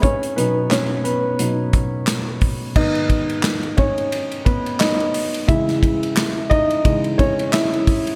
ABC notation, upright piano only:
X:1
M:4/4
L:1/16
Q:"Swing 16ths" 1/4=88
K:G#m
V:1 name="Upright piano"
[Cc]2 [B,B]2 [Cc]2 [B,B]8 z2 | [Dd]6 [Cc]4 [B,B]2 [Dd]3 z | [Ee]6 [Dd]4 [Cc]2 [Ee]3 z |]
V:2 name="Upright piano" clef=bass
z2 [B,,F,D]6 [B,,F,D]2 z6 | [G,,D,B,]16 | [C,E,G,]6 z2 [C,E,G,]2 z6 |]